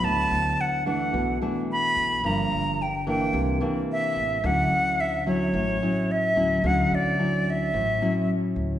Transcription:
<<
  \new Staff \with { instrumentName = "Flute" } { \time 4/4 \key d \major \tempo 4 = 109 a''4 fis''8 fis''4 r8 b''4 | bes''4 g''8 g''4 r8 e''4 | fis''4 e''8 cis''4. e''4 | fis''8 d''4 e''4. r4 | }
  \new Staff \with { instrumentName = "Nylon-string guitar" } { \time 4/4 \key d \major << { <fis b e'>4. <e a d'>4 <e a d'>4. | <f bes d'>4 r8 <e bes d'>4 <e bes d'>4. | <fis cis' e'>4. <fis cis' e'>4 <fis cis' e'>4 <fis cis' e'>8 | <fis cis' e'>4 <fis cis' e'>4. <fis cis' e'>4. | } \\ { d2 b,2 | g,2 c2 | d2 a,2 | d2 a,2 | } >> }
  \new Staff \with { instrumentName = "Upright bass" } { \clef bass \time 4/4 \key d \major d,8 d,4. b,,8 r4 b,,8 | g,,8 g,,4. c,8 r4 a,,8 | d,8 d,4. a,,8 r4 d,8 | d,8 d,4. a,,8 r4 d,8 | }
>>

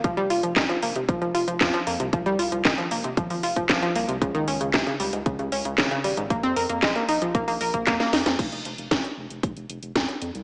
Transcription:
<<
  \new Staff \with { instrumentName = "Synth arpeggio sound" } { \clef bass \time 4/4 \key f \minor \tempo 4 = 115 f16 g16 f'16 f16 ees16 f16 bes16 c16 f16 f16 f'16 f16 f16 f16 bes16 c16 | f16 g16 f'16 f16 ees16 f16 bes16 c16 f16 f16 f'16 f16 f16 f16 bes16 c16 | des16 ees16 des'16 des16 c16 des16 g16 aes,16 des16 des16 des'16 des16 des16 des16 g16 aes,16 | bes16 c'16 bes'16 bes16 aes16 bes16 ees'16 f16 bes16 bes16 bes'16 bes16 bes16 bes16 ees'16 f16 |
r1 | }
  \new Staff \with { instrumentName = "Analog synth bass" } { \clef bass \time 4/4 \key f \minor f,,16 f,,16 f,,16 f,,16 f,,16 r16 f,,16 f,,16 f,,16 f,,16 f,,16 f,,16 f,16 r16 f,16 c,16 | c,16 c,16 c,16 c,16 f,,16 r16 f,,16 f,,16 aes,,16 aes,,16 f,,16 f,,16 c,16 r16 c,16 c,16 | des,16 des,16 des,16 des,16 des,16 r16 des,16 des,16 des,16 des,16 des,16 des,16 aes,,16 r16 aes,,16 aes,,16 | bes,,16 f,16 f,16 f,16 bes,,16 r16 bes,,16 bes,,16 bes,,16 bes,,16 bes,,16 bes,,16 f,16 r16 f,16 f,16 |
f,,16 f,,16 f,,16 f,,16 f,,16 r16 f,,16 f,,16 f,,16 f,,16 f,,16 f,,16 f,16 r16 f,16 c,16 | }
  \new DrumStaff \with { instrumentName = "Drums" } \drummode { \time 4/4 <hh bd>16 hh16 hho16 hh16 <hc hh bd sn>16 hh16 hho16 hh16 <hh bd>16 hh16 hho16 hh16 <hc hh bd sn>16 hh16 hho16 hh16 | <hh bd>16 hh16 hho16 hh16 <hc hh bd sn>16 hh16 hho16 hh16 <hh bd>16 hho16 hho16 <hh bd>16 <hc hh bd sn>16 hh16 hho16 hh16 | <hh bd>16 hh16 hho16 hh16 <hc hh bd sn>16 hh16 hho16 hh16 <hh bd>16 hh16 hho16 hh16 <hc hh bd sn>16 hh16 hho16 hh16 | <hh bd>16 hh16 hho16 hh16 <hc hh bd sn>16 hh16 hho16 hh16 <hh bd>16 hho16 hho16 <hh bd>16 <hc hh bd sn>16 <hh sn>16 <hho sn>16 <hh sn>16 |
<cymc hh bd>16 hh16 hh16 hh16 <hh bd sn>16 hh8 hh16 <hh bd>16 hh16 hh16 hh16 <hh bd sn>16 hh16 hh16 hh16 | }
>>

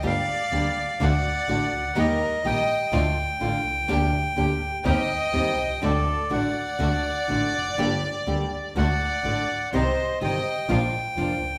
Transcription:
<<
  \new Staff \with { instrumentName = "Bandoneon" } { \time 4/4 \key g \minor \tempo 4 = 124 f''2 fis''2 | ees''4 g''2.~ | g''2 g''2 | d''4 fis''2. |
r2 fis''2 | ees''4 g''2. | }
  \new Staff \with { instrumentName = "Violin section" } { \time 4/4 \key g \minor d''2 d''2 | bes'4 ees''4 r2 | r2 ees''2 | a'4 d''2.~ |
d''2 d''2 | c''4 ees''4 r2 | }
  \new Staff \with { instrumentName = "String section" } { \time 4/4 \key g \minor <bes d' g'>8 r8 <bes d' g'>8 r8 <a d' fis'>8 r8 <a d' fis'>8 r8 | <bes ees' g'>8 r8 <bes ees' g'>8 r8 <a d' f'>8 r8 <a d' f'>8 r8 | <bes d' g'>8 r8 <bes d' g'>8 r8 <c' ees' g'>8 r8 <c' ees' g'>8 r8 | <a d' fis'>8 r8 <a d' fis'>8 r8 <a d' fis'>8 r8 <a d' fis'>8 r8 |
<bes d' g'>8 r8 <bes d' g'>8 r8 <a d' fis'>8 r8 <a d' fis'>8 r8 | <c' ees' g'>8 r8 <c' ees' g'>8 r8 <bes d' f'>8 r8 <bes d' f'>8 r8 | }
  \new Staff \with { instrumentName = "Nylon-string guitar" } { \time 4/4 \key g \minor <d g bes d' g'>8 r8 <d g bes d' g'>8 r8 <d a d' fis'>8 r8 <d a d' fis'>8 r8 | <ees g bes ees' g'>8 r8 <ees g bes ees' g'>8 r8 <d a d' f'>8 r8 <d a d' f'>8 r8 | <d bes d' g'>8 r8 <d bes d' g'>8 r8 <ees g c' g'>8 r8 <ees g c' g'>8 r8 | <d a d' fis'>8 r8 <d a d' fis'>8 r8 <d a d' fis'>8 r8 <d a d' fis'>8 r8 |
<d g bes d' g'>8 r8 <d g bes d' g'>8 r8 <d a d' fis'>8 r8 <d a d' fis'>8 r8 | <c ees g c' g'>8 r8 <c ees g c' g'>8 r8 <f bes d' f'>8 r8 <f bes d' f'>8 r8 | }
  \new Staff \with { instrumentName = "Double bass" } { \clef bass \time 4/4 \key g \minor g,,8 r8 d,8 r8 d,8 r8 a,,8 cis,8 | ees,8 r8 bes,,8 r8 d,8 r8 a,,8 c,8 | d,8 r8 d,8 r8 ees,8 r8 ees,8 c,8 | d,8 r8 a,,8 r8 d,8 r8 a,,8 f,,8 |
g,,8 r8 d,8 r8 d,8 r8 a,,8 r8 | c,8 r8 g,,8 r8 bes,,8 r8 f,,8 cis,8 | }
>>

